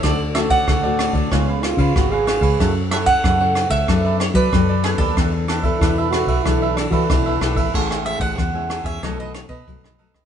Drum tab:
CC |----------------|----------------|----------------|x---------------|
RD |x-xxx-xxx-xxx-xx|x-xxx-xxx-xxx-xx|x-xxx-xxx-xxx-xx|--xxx-xxx-xxx-xx|
SD |r-r-r-r-r-r-r-r-|r-r-r-r-r-r-r-r-|r-r-r-r-r-r-r-r-|-r--r-r-r-r--r-r|
BD |o--oo--oo--oo--o|o--oo--oo--oo--o|o--oo--oo--oo--o|o--oo--oo--oo--o|